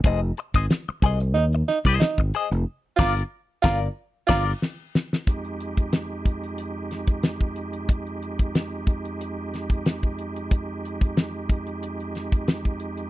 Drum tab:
CC |----------------|--x-------x-----|----------------|----------------|
HH |x-xxx-xxxxxxx-xx|----------------|xxxxx-xxx-xxx-xx|xxxxx-xxx-xxx-xx|
SD |----o-----o-o---|--o---o---o-o-oo|----o-----o-o---|----o-----o-o---|
BD |o--o--o----o-o--|--o---o---o-----|o--o--o----o-o--|o--o--o----o-o--|

CC |----------------|
HH |x-xxx-xxxxxxxxxx|
SD |----o-----o-o---|
BD |o--o--o----o-o--|